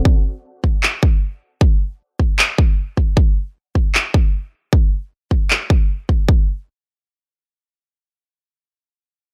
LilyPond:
\new DrumStaff \with { instrumentName = "Drums" } \drummode { \time 4/4 \tempo 4 = 154 bd4 r8 bd8 hc8 bd8 r4 | bd4 r8 bd8 hc8 bd8 r8 bd8 | bd4 r8 bd8 hc8 bd8 r4 | bd4 r8 bd8 hc8 bd8 r8 bd8 |
bd4 r4 r4 r4 | r4 r4 r4 r4 | }